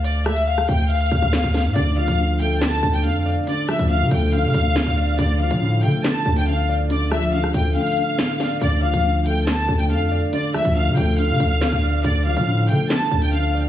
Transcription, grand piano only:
\new Staff \with { instrumentName = "Grand piano" } { \clef bass \time 4/4 \key d \minor \tempo 4 = 140 r1 | d8 f8 d8 a8 d8 d'8 d8 d''8 | d8 f8 d8 a8 d8 d'8 d8 d''8 | d8 f8 d8 a8 d8 d'8 d8 d''8 |
d8 f8 d8 a8 d8 d'8 d8 d''8 | d8 f8 d8 a8 d8 d'8 d8 d''8 | d8 f8 d8 a8 d8 d'8 d8 d''8 | d8 f8 d8 a8 d8 d'8 d8 d''8 | }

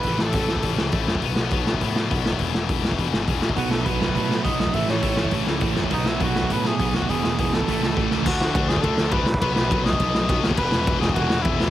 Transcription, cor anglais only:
\new Staff \with { instrumentName = "Cor anglais" } { \time 4/4 \key a \lydian \tempo 4 = 205 b'8 a'2 r4. | r1 | r1 | fis'8 a'8 b'4 b'4 dis''8 dis''8 |
e''8 cis''2 r4. | dis'8 e'8 fis'4 b'8 gis'4 fis'8 | gis'4 gis'8 a'2 r8 | fis'4. gis'8 a'4 b'4 |
b'8 b'4 dis''2 r8 | b'4. gis'8 fis'4 e'4 | }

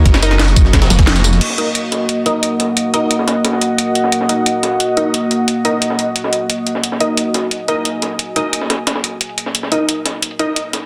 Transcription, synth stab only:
\new Staff \with { instrumentName = "Synth stab" } { \time 4/4 \key ees \minor \tempo 4 = 177 <ees' bes' ees''>8 <ees' bes' ees''>8 r2. | r8 <ees' bes' ees''>2 <ees' bes' ees''>4.~ | <ees' bes' ees''>8 <ees' bes' ees''>8 r2. | r8 <ees' bes' ees''>2 <ees' bes' ees''>4.~ |
<ees' bes' ees''>8 <ees' bes' ees''>8 r2. | r8 <ees' bes' ees''>2 <ees' bes' ees''>4.~ | <ees' bes' ees''>8 <ees' bes' ees''>8 r2. | r8 <ees' bes' ees''>2 <ees' bes' ees''>4. | }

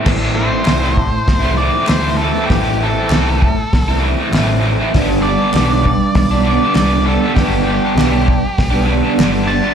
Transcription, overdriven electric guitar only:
\new Staff \with { instrumentName = "Overdriven electric guitar" } { \time 4/4 \key a \minor \tempo 4 = 99 <a, e a c' e'>8 <e a c' e'>8 <a, e a c' e'>16 <a c' e'>8. r16 <a c' e'>16 <e a c' e'>16 <a c' e'>16 <a, e a c' e'>16 <a c' e'>16 <e a c' e'>16 <a c' e'>16 | <a, e a c' e'>8 <e a c' e'>8 <a, e a c' e'>16 <a c' e'>8. r16 <a c' e'>16 <e a c' e'>16 <a c' e'>16 <a, e a c' e'>16 <a c' e'>16 <e a c' e'>16 <a c' e'>16 | <g, d g b d'>8 <d g b d'>8 <g, d g b d'>16 <g b d'>8. r16 <g b d'>16 <d g b d'>16 <g b d'>16 <g, d g b d'>16 <g b d'>16 <d g b d'>16 <g b d'>16 | <g, d g b d'>8 <d g b d'>8 <g, d g b d'>16 <g b d'>8. r16 <g b d'>16 <d g b d'>16 <g b d'>16 <g, d g b d'>16 <g b d'>16 <d g b d'>16 <g b d'>16 | }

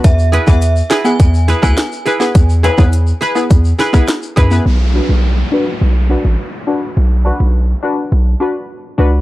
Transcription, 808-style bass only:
\new Staff \with { instrumentName = "808-style bass" } { \clef bass \time 4/4 \key b \dorian \tempo 4 = 104 e,8. e,8. r8 e,8. d,16 r4 | e,8. e,8. r8 e,8 r4 fis,8 | b,,8. b,,8. r8 b,,8. a,,16 r4 | b,,8. b,,8. r8 b,,8 r4 cis,8 | }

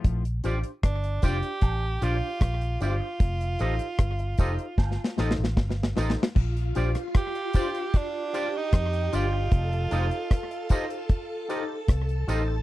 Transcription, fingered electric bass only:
\new Staff \with { instrumentName = "Fingered electric bass" } { \clef bass \time 4/4 \key bes \major \tempo 4 = 76 bes,,8 a,,16 r16 g,,8 f,,16 r16 a,,8 bes,,16 r16 bes,,8 g,,16 r16 | f,,8 a,,16 r16 g,,8 f,,16 r16 g,,16 r16 a,,16 a,,16 r8 a,,16 r16 | bes,,8 bes,,16 r2 r16 f,8 g,,8 | f,,8 f,,16 r2 r16 c,8 a,,8 | }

